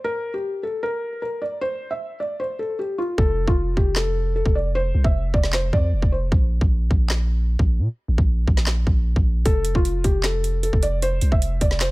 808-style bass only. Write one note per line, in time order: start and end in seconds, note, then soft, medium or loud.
3.18 3.46 F1 loud
3.48 3.76 F1 loud
3.77 4.43 F1 loud
4.46 4.93 F1 loud
4.95 5.04 C2 loud
5.04 5.33 F1 loud
5.34 5.71 F1 loud
5.73 5.94 F2 loud
5.93 6.02 E1 loud
6.02 6.31 F1 loud
6.32 6.60 A#1 loud
6.61 6.89 A#1 loud
6.91 7.57 A#1 loud
7.59 7.80 A#1 loud
7.79 7.88 A#2 loud
8.08 8.18 A1 loud
8.18 8.46 A#1 loud
8.47 8.85 A#1 loud
8.87 9.15 A#1 loud
9.16 9.44 A#1 loud
9.46 9.74 F1 loud
9.75 10.03 F1 loud
10.04 10.70 F1 loud
10.73 11.20 F1 loud
11.22 11.31 C2 loud
11.32 11.60 F1 loud
11.61 11.91 F1 loud